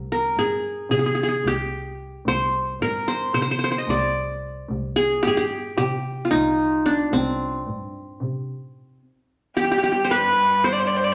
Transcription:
Already playing: C2 A#4
0.12 A#4
0.36 G2 G#4
0.90 C3 G#4
0.99 G#4
1.06 G#4
1.15 G#4
1.23 G#4
1.29 G#4
1.44 C2 G4
2.25 C2 C5
2.79 G2 A#4
3.08 C5
3.34 C3 C5
3.42 C5
3.51 C5
3.59 C5
3.64 C5
3.71 C5
3.78 D#5
3.87 C2 D5
4.69 C2
4.96 G#4
5.23 G2 G4
5.27 G#4
5.37 G4
5.77 C3 G4
6.25 F4
6.31 C2 D#4
6.86 D4
7.12 C2 C4
7.66 G2
8.21 C3
9.57 G2 G4
9.64 G4
9.71 G4
9.78 G4
9.83 G4
9.92 G4
10.04 C5
10.11 B4
10.64 C5
10.73 D5
10.80 C5
10.88 D5
10.96 C5
11.05 D5

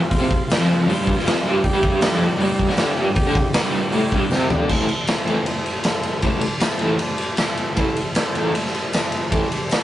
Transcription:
0.01 F2
0.09 F4 C5 F5, kick, open hi-hat
0.19 C3 C4
0.31 kick
0.47 F4 C5 F5, open hi-hat, tambourine
0.52 snare
0.58 F2 F3
0.86 G2 G3 F4 C5 F5, open hi-hat
1.07 kick
1.16 F2 F3, snare
1.24 F4 C5 F5, snare, open hi-hat, tambourine
1.44 G2 G3
1.62 G2 G4 D5 G5, kick, open hi-hat
1.73 G2 G3
1.83 kick
2.00 G4 D5 G5, snare, open hi-hat, tambourine
2.11 F2 F3
2.29 G2
2.36 G2 G3 G4 D5 G5, open hi-hat
2.59 kick
2.68 D3 D4, snare
2.75 G4 D5 G5, snare, open hi-hat, tambourine
2.97 G2 G3
3.07 G2
3.15 G4 D5 G5, kick, open hi-hat
3.26 D3 D4
3.35 kick
3.53 G4 D5 G5, snare, open hi-hat, tambourine
3.64 G2 G3
3.90 A2 A3 G4 D5 G5, open hi-hat
4.12 G2 G3, kick
4.28 C3 C4 G4 D5 G5, snare, tambourine
4.50 D3 D4, floor tom
4.68 A2 E3 A3 A4 C5 E5, kick, crash
4.89 ride
5.07 A4 C5 E5, snare, ride, tambourine
5.27 A2 E3 A3, ride
5.46 A4 C5 E5, ride
5.66 ride
5.83 A4 C5 E5, snare, ride, tambourine
6.03 ride
6.21 A2 E3 A4 C5 D5, kick, ride
6.25 A3
6.41 ride
6.60 A4 C5 E5, snare, ride, tambourine
6.79 A2 E3 A3, ride
6.99 A4 C5 D5, ride
7.18 ride
7.37 A4 C5 E5, snare, ride, tambourine
7.57 ride
7.76 A2 E3 A3 A4 C5 E5, kick, ride
7.96 ride
8.15 A4 C5 E5, snare, ride, tambourine
8.35 A2 E3 A3, ride
8.52 A4 C5 E5, ride
8.66 snare
8.74 ride
8.93 A4 C5 E5, snare, ride, tambourine
9.12 ride
9.31 A2 E3 A3 A4 C5 D5, kick, ride
9.52 ride
9.67 A4 C5 E5, tambourine
9.71 snare, ride

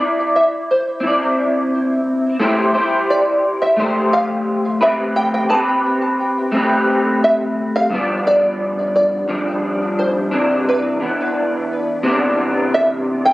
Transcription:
Already playing: D5
0.00 E4 D5
0.36 E5
0.71 C5
1.00 C4 E4
1.07 D5
2.40 A3 E4 G4 C5
2.74 E4 G4 C5
3.10 D5
3.62 E5
3.77 A3 G4 C5
4.13 F5
4.81 A3 C4 G4 B4 E5
5.16 G5
5.34 G5
5.49 C4 G4 B4 A5
6.52 A3 C4
6.56 G4 B4
7.24 E5
7.76 F5
7.90 G2 F3 B3
7.94 D4
8.27 D5
8.96 D5
9.28 G2 F3 D4
9.99 C5
10.31 C3 E3 D4
10.69 B4
11.00 E3 B3 D4
12.03 C3 E3 B3
12.08 D4
12.74 E5
13.25 G5

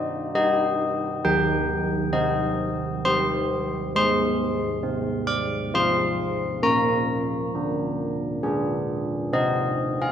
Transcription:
Already playing: C4 D#4 D#5
0.35 D#4 G4 D#5
1.25 D#3 G5
2.13 C4 D#5
3.05 C4 G4 C6
3.96 G#3 C6
4.83 C4
5.27 D6
5.74 C4 F4 C6
6.63 A#3 A#5
7.55 D4
8.43 D4 G#4
9.33 C4 D#5
10.02 F5

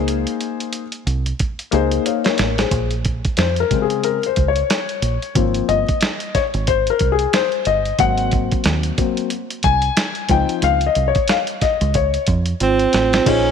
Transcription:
Already playing: C#2 A#3 D#4 G#4 C5
0.08 closed hi-hat
0.27 closed hi-hat
0.41 closed hi-hat
0.60 closed hi-hat
0.73 closed hi-hat
0.92 closed hi-hat
1.07 C2, closed hi-hat
1.26 closed hi-hat
1.39 kick, closed hi-hat
1.59 closed hi-hat
1.71 C#2 A#3 D#4 G#4 C5, closed hi-hat
1.92 closed hi-hat
2.06 C#5 F5, closed hi-hat
2.24 A#4 C#5, snare, closed hi-hat
2.38 A1, snare, closed hi-hat
2.58 G#4 C5, snare, closed hi-hat
2.71 A#1, kick, closed hi-hat
2.91 closed hi-hat
3.05 kick, closed hi-hat
3.25 kick, closed hi-hat
3.37 F2 C5, snare, closed hi-hat
3.56 A#4, closed hi-hat
3.71 C#3 G#3 C4, kick, closed hi-hat
3.82 G#4
3.90 closed hi-hat
4.04 A#4, closed hi-hat
4.23 C5, closed hi-hat
4.36 C#2, kick, closed hi-hat
4.48 C#5
4.56 closed hi-hat
4.70 snare, closed hi-hat
4.89 closed hi-hat
5.02 A#1, closed hi-hat
5.22 closed hi-hat
5.35 G#1 F3 A#3 C4, kick, closed hi-hat
5.54 closed hi-hat
5.69 G1 D#5, closed hi-hat
5.88 kick, closed hi-hat
6.01 snare, closed hi-hat
6.20 closed hi-hat
6.35 C#5, kick, snare, closed hi-hat
6.54 G#1, closed hi-hat
6.67 C5, kick, closed hi-hat
6.87 A#4, closed hi-hat
6.99 C2, kick, closed hi-hat
7.12 G#4
7.19 closed hi-hat
7.33 C5, snare, closed hi-hat
7.52 closed hi-hat
7.65 G1 D#5, closed hi-hat
7.85 closed hi-hat
7.99 G#1 F#3 A#3 C4 F#5, kick, closed hi-hat
8.18 closed hi-hat
8.31 kick, closed hi-hat
8.52 kick, closed hi-hat
8.64 D#2, snare, closed hi-hat
8.83 closed hi-hat
8.97 F#3 A#3 C4, kick, closed hi-hat
9.17 closed hi-hat
9.30 closed hi-hat
9.50 closed hi-hat
9.63 C2 G#5, kick, closed hi-hat
9.82 closed hi-hat
9.97 snare, closed hi-hat
10.15 closed hi-hat
10.29 C#2 F3 C4 D#4 G5, kick, closed hi-hat
10.49 closed hi-hat
10.62 C#2 F5, closed hi-hat
10.81 closed hi-hat
10.87 D#5
10.95 C2, closed hi-hat
11.08 C#5
11.15 kick, closed hi-hat
11.28 F5, snare, closed hi-hat
11.47 closed hi-hat
11.61 D#5, kick, snare, closed hi-hat
11.81 C#2, closed hi-hat
11.94 C#5, kick, closed hi-hat
12.14 closed hi-hat
12.27 F2, kick, closed hi-hat
12.46 closed hi-hat
12.60 G#1 C4 F4, closed hi-hat
12.79 closed hi-hat
12.93 A1, snare, closed hi-hat
13.13 snare, closed hi-hat
13.25 A#1 A#3 C#4 D#4 F4 G#4 C5, kick, closed hi-hat, crash

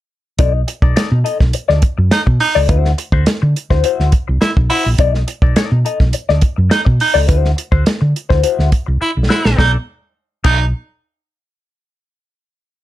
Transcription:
0.39 B1 D#4 A4 D5, kick, closed hi-hat
0.54 muted clean electric guitar stroke
0.68 muted clean electric guitar stroke, closed hi-hat
0.82 B1 D#4 A4 D5, kick
0.96 D#4 A4 D5, snare, closed hi-hat
1.11 B2, muted clean electric guitar stroke
1.24 D#4 A4 D#5, closed hi-hat
1.39 B1, muted clean electric guitar stroke, kick, snare
1.53 muted clean electric guitar stroke, closed hi-hat
1.68 D2 D#4 A4 D5, snare
1.82 muted clean electric guitar stroke, kick, closed hi-hat
1.98 F#2, muted clean electric guitar stroke
2.11 D#4, muted clean electric guitar stroke, snare, closed hi-hat
2.26 B2, muted clean electric guitar stroke, kick
2.40 D#4, open hi-hat
2.55 C#2 D#4 A4 D5
2.68 D2 E4 F#4 C5, kick, closed hi-hat
2.85 snare
2.98 muted clean electric guitar stroke, closed hi-hat
3.12 D2 E4 F#4 C5, kick
3.26 muted clean electric guitar stroke, muted fingered electric bass stroke, snare, closed hi-hat
3.42 D3, muted clean electric guitar stroke
3.56 closed hi-hat
3.70 D2 E4 F#4 C5, kick, snare
3.84 E4 F#4 C5, closed hi-hat
4.00 D2, snare
4.12 kick, closed hi-hat
4.28 C2, muted clean electric guitar stroke
4.41 E4, muted clean electric guitar stroke, snare, closed hi-hat
4.57 B1, kick
4.70 E4 F#4 C5, open hi-hat
4.85 A#1, muted clean electric guitar stroke
4.98 B1 D#4 A4 D5, kick, closed hi-hat
5.14 muted clean electric guitar stroke, snare
5.27 muted clean electric guitar stroke, closed hi-hat
5.42 B1 D#4 A4 D5, kick
5.56 D#4 A4 D5, snare, closed hi-hat
5.72 B2, muted clean electric guitar stroke
5.85 D#4 A4 D#5, closed hi-hat
6.00 B1, muted clean electric guitar stroke, kick, snare
6.13 muted clean electric guitar stroke, closed hi-hat
6.29 D2 D#4 A4 D5, snare
6.41 muted clean electric guitar stroke, kick, closed hi-hat
6.56 F#2, muted clean electric guitar stroke
6.70 D#4, muted clean electric guitar stroke, snare, closed hi-hat
6.85 B2, muted clean electric guitar stroke, kick
7.00 D#4, open hi-hat
7.14 C#2 D#4 A4 D5
7.27 D2 E4 F#4 C5, kick, closed hi-hat
7.45 snare
7.56 muted clean electric guitar stroke, closed hi-hat
7.72 D2 E4 F#4 C5, kick
7.86 muted clean electric guitar stroke, muted fingered electric bass stroke, snare, closed hi-hat
8.01 D3, muted clean electric guitar stroke
8.16 closed hi-hat
8.29 D2 E4 F#4 C5, kick, snare
8.43 E4 F#4 C5, closed hi-hat
8.59 D2, snare
8.72 muted clean electric guitar stroke, kick, closed hi-hat
8.86 C2, muted clean electric guitar stroke
9.01 E4, muted clean electric guitar stroke
9.17 B1
9.29 E4 F#4 C5, snare
9.45 A#1, snare
9.57 B1 D#4 A4 D5, kick, snare
10.44 B1 D#4 A4 D5, kick, crash

